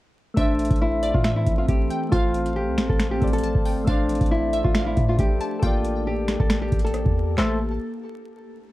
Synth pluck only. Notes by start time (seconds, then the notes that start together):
0.37 E5
1.03 D5
1.25 E5
1.90 G5
2.12 F5
3.44 A5
3.66 G5
3.87 F5
4.53 E5
4.75 F5
5.41 A5
5.63 G5
7.38 A5